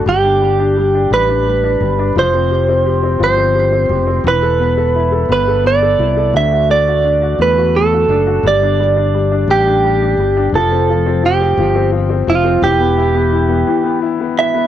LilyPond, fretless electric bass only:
\new Staff \with { instrumentName = "Fretless electric bass" } { \clef bass \time 6/8 \key g \mixolydian \tempo 4. = 57 g,,4. a,,4 g,,8 | f,,4. g,,4 f,,8 | e,,4. g,,4 c,8 | d,4. e,4 fis,,8 |
g,,4. a,,4 g,,8 | f,,4. g,,4 f,,8 | e,,4. r4. | }